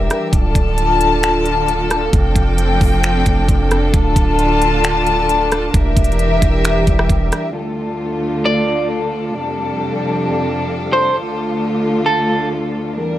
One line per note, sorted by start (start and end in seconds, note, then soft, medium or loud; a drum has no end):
0.00 0.31 E3 medium
0.00 0.31 G3 medium
0.00 2.09 D4 medium
0.00 0.31 E4 medium
0.00 0.31 G4 medium
0.00 0.31 A#4 medium
0.00 3.90 D5 medium
0.00 0.31 E5 loud
0.10 cross-stick medium
0.10 closed hi-hat medium
0.32 0.54 D1 loud
0.32 2.11 D3 medium
0.32 5.70 A3 medium
0.32 2.11 F4 medium
0.32 3.90 F4 medium
0.32 5.70 A4 medium
0.32 2.11 A5 loud
0.32 kick loud
0.32 closed hi-hat medium
0.55 2.09 D1 loud
0.55 kick loud
0.55 closed hi-hat medium
0.78 closed hi-hat medium
1.01 closed hi-hat medium
1.23 finger snap loud
1.23 closed hi-hat medium
1.46 closed hi-hat medium
1.68 closed hi-hat medium
1.91 cross-stick medium
1.91 closed hi-hat medium
2.13 2.35 F1 loud
2.13 3.92 F3 loud
2.13 3.92 C4 medium
2.13 7.51 D4 medium
2.13 3.92 G5 loud
2.13 kick loud
2.13 closed hi-hat medium
2.36 2.79 F1 loud
2.36 kick medium
2.36 closed hi-hat medium
2.58 closed hi-hat medium
2.81 3.24 F1 loud
2.81 kick medium
2.81 open hi-hat medium
3.04 finger snap loud
3.04 closed hi-hat medium
3.26 3.48 F1 loud
3.26 kick medium
3.26 closed hi-hat medium
3.49 3.92 F1 loud
3.49 kick medium
3.49 closed hi-hat medium
3.71 cross-stick medium
3.71 closed hi-hat medium
3.94 4.15 D1 loud
3.94 5.72 D3 medium
3.94 5.72 F4 medium
3.94 5.72 D5 loud
3.94 5.72 A5 loud
3.94 kick loud
3.94 closed hi-hat medium
4.16 5.70 D1 loud
4.16 kick loud
4.16 closed hi-hat medium
4.39 closed hi-hat medium
4.62 closed hi-hat medium
4.84 finger snap loud
4.84 closed hi-hat medium
5.07 closed hi-hat medium
5.29 closed hi-hat medium
5.52 cross-stick medium
5.52 closed hi-hat medium
5.74 5.96 E1 loud
5.74 7.53 E3 medium
5.74 7.53 G3 medium
5.74 7.53 E4 medium
5.74 7.53 G4 medium
5.74 7.53 A#4 medium
5.74 7.53 D5 medium
5.74 7.53 E5 loud
5.74 kick loud
5.74 closed hi-hat medium
5.97 6.40 E1 loud
5.97 kick loud
5.97 closed hi-hat medium
6.04 closed hi-hat medium
6.12 closed hi-hat soft
6.19 closed hi-hat medium
6.42 6.85 E1 loud
6.42 kick loud
6.42 closed hi-hat medium
6.65 finger snap loud
6.65 closed hi-hat medium
6.87 7.09 E1 loud
6.87 kick medium
6.87 closed hi-hat medium
6.99 cross-stick loud
7.09 7.31 E1 loud
7.09 kick medium
7.09 closed hi-hat medium
7.32 cross-stick medium
7.32 closed hi-hat medium
7.54 9.33 D2 medium
7.54 9.33 D3 medium
7.54 11.12 A3 medium
7.54 9.33 A3 medium
7.54 12.92 F4 medium
7.54 9.33 F4 medium
7.54 12.92 A4 medium
7.54 12.92 D5 medium
8.45 8.88 D5 medium
9.35 11.14 F2 medium
9.35 11.14 C3 medium
9.35 11.14 G3 medium
9.35 11.14 D4 medium
10.93 11.14 C5 medium
11.15 12.94 D2 medium
11.15 12.94 D3 medium
11.15 12.94 A3 medium
11.15 12.94 F4 medium
12.06 12.48 A4 medium
12.96 13.19 E2 medium
12.96 13.19 E3 medium
12.96 13.19 G3 medium
12.96 13.19 D4 medium
12.96 13.19 G4 medium
12.96 13.19 A#4 medium
12.96 13.19 E5 medium